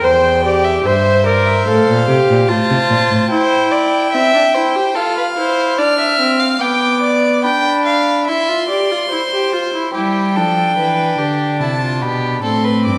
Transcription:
0.02 E2 C5 G5
0.44 G4 D5
0.64 E5
0.85 G2 C5 E5
1.25 A#4 D5
1.46 E5
1.67 A2 A4 F5
1.88 A#2
2.08 C3 G4
2.29 A#2
2.48 A2 F4 C5 A5
2.70 C3
2.90 A#2
3.11 A2
3.30 E4 C5 G5
3.71 D5
4.12 C4 E5
4.34 D4
4.54 E4 C5
4.76 G4
4.95 F4 A4 F5
5.17 B4
5.37 E4 C5
5.79 D4 D5 F6
5.99 E5
6.20 C4
6.40 F5
6.61 B3 G5 D6
7.02 D5
7.44 D4 G5 B5
7.85 F5
8.27 E4 E5 C6
8.49 F4
8.69 G4 D5
8.91 F4
9.11 E4 C5
9.33 G4
9.53 F4
9.74 E4
9.94 G3 E4 G4 G5
10.35 F3 D4 A4
10.77 E3 B4
11.18 D3 G4
11.60 C3 E4 A5
11.82 F4
12.01 B2 G4 B5
12.43 A2 C4 A4 C6
12.64 B4
12.85 G2 D6

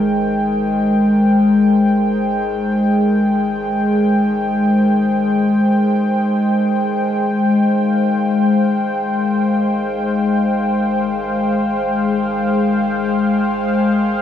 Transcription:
Already playing: G#1 D#3 G#3 G#4 A#4 C5 G5
7.25 G#1 G#3
7.64 F5
7.95 G#4

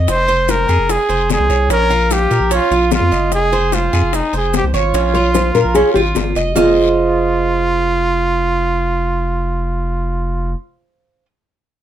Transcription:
Already playing: D#5
0.07 F1 C5, high bongo, long guiro, maracas
0.28 C5, high bongo, maracas
0.48 A#4, high bongo, short guiro, maracas
0.68 F2 G#4, high bongo, short guiro, maracas
0.79 F1
0.89 G#4, high bongo, long guiro, maracas
1.09 F1 C5, maracas
1.30 G#4, high bongo, low bongo, short guiro, maracas
1.39 C2
1.50 C2 C#5, high bongo, short guiro, maracas
1.69 A#1 C#4 A#4, high bongo, long guiro, maracas
1.90 F4, high bongo, maracas
2.11 G4, high bongo, short guiro, maracas
2.31 A#2 A#4, high bongo, short guiro, maracas
2.40 A#1
2.51 C#4 F4, high bongo, long guiro, maracas
2.71 A#1 F4, maracas
2.91 F4, high bongo, low bongo, short guiro, maracas
3.01 F2
3.11 F#1 D#5, high bongo, short guiro, maracas
3.31 F1 G#4, high bongo, long guiro, maracas
3.52 C5, high bongo, maracas
3.72 F4, high bongo, short guiro, maracas
3.93 F2 G#4, high bongo, short guiro, maracas
4.03 F1
4.13 D#4, high bongo, long guiro, maracas
4.33 F1 G#4 C5, maracas
4.54 G4, high bongo, low bongo, short guiro, maracas
4.63 C2
4.74 G#1 F4 C#5, high bongo, short guiro, maracas
4.94 A#1 C#4, high bongo, long guiro, maracas
5.14 F4 C#5, high bongo, maracas
5.34 C5, high bongo, short guiro, maracas
5.55 A#2 A#4, short guiro, maracas
5.65 A#1
5.74 C#4 G#4, high bongo, long guiro, maracas
5.94 G#1 F4 G4, maracas
6.15 G1 F4, high bongo, low bongo, short guiro, maracas
6.35 F1 D#5, high bongo, short guiro, maracas
6.55 F1 F4 G#4 C5 D#5, low bongo, long guiro, maracas

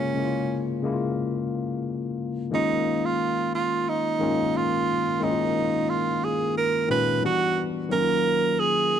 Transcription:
Already playing: C#3 G#3 A#3 C#4 F4
0.15 C#3 G#3 A#3 E4
0.25 F4
0.82 C#3 G#3 A#3 E4
0.93 F4
2.51 D#3 G#3 A#3 C#4 D#4 F4
3.05 F4
3.55 F4
3.89 D#4
4.19 D#3 G#3 A#3 C#4 F4
4.57 F4
5.20 D#3 G#3 A#3 C#4 D#4 E4
5.31 F4
5.90 F4
6.24 G#4
6.57 A#4
6.88 A#2 D#3 G#3 C#4 F4 B4
7.21 E3 G3 B3 D4 F#4
7.26 F#4
7.89 D#3 F#3 A#3 C#4 D#4 A#4
8.00 F4
8.60 G#4

